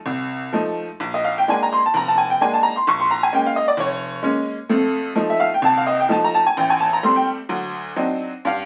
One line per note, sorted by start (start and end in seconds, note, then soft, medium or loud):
0.06 0.47 C2 medium
0.53 0.86 F3 medium
0.53 0.87 A3 soft
0.53 0.87 D#4 medium
1.00 1.41 A#1 medium
1.14 1.31 D#5 medium
1.24 1.36 F5 medium
1.38 1.47 G5 medium
1.48 1.81 G#3 medium
1.48 1.81 A#3 soft
1.48 1.81 D4 medium
1.48 1.64 G#5 medium
1.63 1.78 A#5 medium
1.73 1.83 C6 loud
1.86 1.94 A5 medium
1.94 2.34 F1 medium
1.94 2.11 A#5 medium
2.08 2.24 A5 medium
2.18 2.29 G#5 medium
2.30 2.39 G5 medium
2.41 2.73 G#3 medium
2.41 2.73 A#3 medium
2.41 2.74 D4 medium
2.41 2.56 G#5 medium
2.54 2.70 A5 medium
2.63 2.75 A#5 loud
2.76 2.85 C6 medium
2.87 3.27 A#1 medium
2.87 3.03 C#6 loud
3.00 3.16 C6 medium
3.11 3.21 A#5 medium
3.23 3.31 G#5 medium
3.32 3.65 G#3 medium
3.32 3.65 A#3 soft
3.32 3.65 C#4 medium
3.32 3.48 G5 medium
3.46 3.62 F5 medium
3.56 3.67 D#5 medium
3.68 3.77 D5 medium
3.77 4.18 F1 medium
3.77 4.22 C#5 medium
4.23 4.56 G#3 medium
4.23 4.57 A#3 soft
4.23 4.57 C#4 medium
4.69 5.10 F2 medium
4.69 5.10 A3 medium
5.15 5.49 F3 medium
5.15 5.49 A3 medium
5.15 5.49 D#4 medium
5.30 5.46 E5 medium
5.40 5.51 F5 loud
5.54 5.62 G5 medium
5.62 6.03 C2 medium
5.62 5.79 A5 loud
5.78 5.93 F5 medium
5.87 5.98 D#5 medium
6.00 6.08 G5 medium
6.09 6.42 F3 medium
6.09 6.42 A3 soft
6.09 6.43 D#4 medium
6.09 6.26 A5 medium
6.24 6.40 A#5 loud
6.34 6.45 A5 loud
6.47 6.55 G#5 medium
6.57 6.97 A1 medium
6.57 6.73 G5 medium
6.70 6.86 G#5 medium
6.80 6.91 A5 medium
6.93 7.02 A#5 medium
7.03 7.36 G3 medium
7.03 7.36 A3 soft
7.03 7.36 C4 medium
7.03 7.19 C6 loud
7.16 7.26 G5 medium
7.49 7.91 D2 medium
7.49 7.91 F#3 medium
7.96 8.31 F#3 medium
7.96 8.31 C4 medium
7.96 8.31 D4 soft
7.96 8.31 D#4 medium
8.45 8.65 G2 medium
8.45 8.65 F5 medium